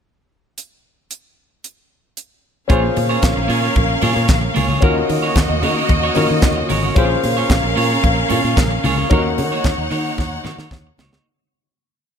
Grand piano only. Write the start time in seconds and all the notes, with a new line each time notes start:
2.68 C#4 F4 G#4 C5
4.81 C#4 F4 F#4 A#4
6.15 C#4 F4 F#4 A#4
6.95 C#4 F4 G#4 C5
9.10 C#4 D#4 F#4 A#4